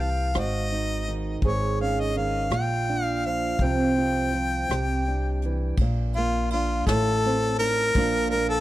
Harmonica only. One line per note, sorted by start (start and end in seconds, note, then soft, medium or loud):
0.01 0.40 F5 medium
0.39 1.18 D#5 medium
1.46 1.78 C#5 medium
1.81 2.02 F5 medium
2.00 2.18 D#5 medium
2.17 2.52 F5 medium
2.53 3.03 G5 medium
3.03 3.26 F5 medium
3.26 3.65 F5 medium
3.63 5.43 G5 medium
6.15 6.49 F4 medium
6.52 6.85 F4 medium
6.86 7.55 A4 loud
7.59 8.27 A#4 loud
8.30 8.47 A#4 loud
8.49 8.60 A4 medium